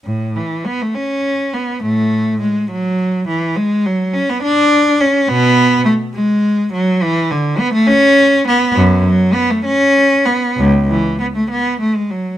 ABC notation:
X:1
M:6/8
L:1/16
Q:3/8=69
K:A
V:1 name="Cello"
A,,2 E,2 B, A, C4 B,2 | [A,,A,]4 G,2 F,4 E,2 | G,2 F,2 C B, D4 C2 | [B,,B,]4 A,2 G,4 F,2 |
E,2 D,2 B, A, C4 B,2 | F,,2 F,2 B, A, C4 B,2 | C,,2 E,2 B, A, B,2 A, G, F,2 |]